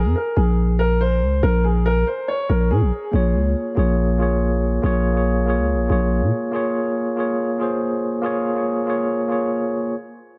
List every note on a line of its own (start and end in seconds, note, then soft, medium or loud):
0.00 0.14 G#4 medium
0.05 0.15 F2 loud
0.16 0.35 A#4 medium
0.36 1.23 A#1 loud
0.36 0.77 G#4 medium
0.79 0.99 A#4 medium
1.01 1.41 C5 medium
1.22 1.42 C#2 loud
1.43 2.04 A#1 loud
1.43 1.63 A#4 medium
1.64 1.84 G#4 medium
1.86 2.05 A#4 loud
2.07 2.27 C5 medium
2.28 2.48 C#5 medium
2.50 2.72 A#1 loud
2.50 2.69 A#4 medium
2.71 2.83 A#2 loud
2.71 3.11 G#4 medium
2.81 2.92 A#1 loud
3.11 3.36 A#1 loud
3.11 3.54 A#3 medium
3.11 3.55 F4 medium
3.11 3.55 G#4 medium
3.16 3.56 C#5 loud
3.35 3.55 C#2 medium
3.75 4.80 A#1 loud
3.75 4.04 A#3 medium
3.75 4.04 F4 medium
3.75 4.05 G#4 medium
3.79 4.06 C#5 loud
4.18 4.60 A#3 medium
4.18 4.61 F4 medium
4.18 4.62 G#4 medium
4.22 4.62 C#5 loud
4.82 5.60 A#1 loud
4.82 5.03 A#3 loud
4.82 5.04 F4 loud
4.82 5.05 G#4 loud
4.86 5.05 C#5 loud
5.13 5.35 A#3 medium
5.13 5.36 F4 medium
5.13 5.36 G#4 medium
5.17 5.37 C#5 medium
5.46 5.74 A#3 medium
5.46 5.75 F4 medium
5.46 5.76 G#4 medium
5.50 5.76 C#5 loud
5.58 5.75 C#2 loud
5.74 5.89 A#1 loud
5.88 6.23 A#1 loud
5.88 6.30 A#3 medium
5.88 6.31 F4 medium
5.88 6.32 G#4 medium
5.92 6.32 C#5 loud
6.22 6.32 A#2 medium
6.52 6.94 A#3 loud
6.52 6.95 F4 loud
6.52 6.96 G#4 loud
6.56 6.96 C#5 loud
7.16 7.44 A#3 medium
7.16 7.45 F4 medium
7.16 7.46 G#4 medium
7.20 7.46 C#5 loud
7.58 8.01 A#3 medium
7.58 8.01 F4 medium
7.58 8.02 G#4 medium
7.62 8.03 C5 loud
8.22 8.44 A#3 loud
8.22 8.44 F4 loud
8.22 8.45 G#4 loud
8.26 8.46 C#5 loud
8.54 8.76 A#3 medium
8.54 8.76 F4 medium
8.54 8.77 G#4 medium
8.58 8.78 C#5 medium
8.86 9.14 A#3 medium
8.86 9.15 F4 medium
8.86 9.16 G#4 medium
8.90 9.16 C#5 loud
9.28 9.71 A#3 medium
9.28 9.71 F4 medium
9.28 9.72 G#4 medium
9.32 9.73 C#5 medium